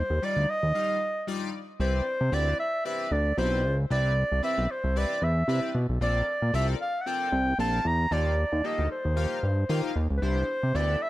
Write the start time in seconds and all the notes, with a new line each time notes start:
Already playing: C5
0.10 D#2
0.22 G3 D#4 F4 D5
0.37 D2
0.50 D#5
0.63 D#2
0.74 G3 D#4 F4 F5
1.27 G3 D#4 F4 D5
1.80 C2 C4 E4 G4 B4 C5 D5
2.21 C3
2.32 D2 C4 E4 G4 B4 D5
2.59 E5
2.85 C4 E4 G4 B4 D5 E5
3.11 D2 D5
3.37 B1 C4 E4 G4 B4 C5 D5
3.64 C#2
3.90 C2 C4 E4 G4 B4 D5
4.32 C2
4.43 C4 E4 G4 B4 D5 E5
4.58 B1
4.71 C5
4.84 C2
4.96 C4 E4 G4 B4 D5
5.22 E2 E5
5.48 C3 C4 E4 G4 B4 D5
5.75 B2
5.89 B1
6.01 A#1 C4 F4 A4 A#4 D5
6.42 A#2
6.53 C2 C4 F4 A4 A#4 D5 E5
6.81 F5
7.01 F#5
7.06 C4 F4 A4 A#4 D5 G5
7.32 C2
7.59 A#1 C4 F4 A4 A#4 F5 A5
7.85 E2 A#5
8.11 D#2 A#3 D#4 F4 G4 D5
8.52 D#2
8.64 A#3 D#4 F4 G4 A4 D#5
8.79 D2
8.92 C5
9.05 D#2
9.16 A#3 D#4 F4 G4 F5
9.43 G2
9.69 D#3 A#3 D#4 F4 G4 F5
9.96 D#2
10.11 C#2
10.17 B4
10.22 C2 B3 D4 E4 G4 C5
10.63 C3
10.74 D2 B3 D4 E4 G4 A4 D5
11.02 E5